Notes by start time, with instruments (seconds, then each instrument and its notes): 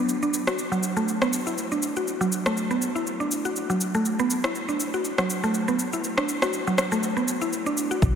0.09 shaker
0.23 synth pluck D4, shaker
0.34 shaker
0.47 synth pluck F#4, cross-stick, shaker
0.59 shaker
0.72 synth pluck F#3, shaker
0.83 shaker
0.97 synth pluck A3, shaker
1.08 shaker
1.22 synth pluck B3, cross-stick, shaker
1.33 shaker
1.47 synth pluck E4, shaker
1.58 shaker
1.72 synth pluck D4, shaker
1.83 shaker
1.96 synth pluck F#4, shaker
2.08 shaker
2.21 synth pluck F#3, shaker
2.32 shaker
2.46 synth pluck A3, cross-stick, shaker
2.57 shaker
2.71 synth pluck B3, shaker
2.82 shaker
2.95 synth pluck E4, shaker
3.07 shaker
3.20 synth pluck D4, shaker
3.31 shaker
3.45 synth pluck F#4, shaker
3.56 shaker
3.70 synth pluck F#3, shaker
3.81 shaker
3.94 synth pluck A3, shaker
4.05 shaker
4.19 synth pluck B3, shaker
4.30 shaker
4.44 synth pluck E4, cross-stick, shaker
4.55 shaker
4.69 synth pluck D4, shaker
4.80 shaker
4.94 synth pluck F#4, shaker
5.05 shaker
5.18 synth pluck F#3, cross-stick, shaker
5.30 shaker
5.43 synth pluck A3, shaker
5.54 shaker
5.68 synth pluck B3, shaker
5.79 shaker
5.93 synth pluck E4, shaker
6.04 shaker
6.17 synth pluck D4, cross-stick, shaker
6.29 shaker
6.42 synth pluck F#4, cross-stick, shaker
6.53 shaker
6.67 synth pluck F#3, shaker
6.78 cross-stick, shaker
6.92 synth pluck A3, shaker
7.03 shaker
7.17 synth pluck B3, shaker
7.28 shaker
7.41 synth pluck E4, shaker
7.53 shaker
7.66 synth pluck D4, shaker
7.77 shaker
7.91 synth pluck F#4, shaker
8.02 sub bass B1, kick, shaker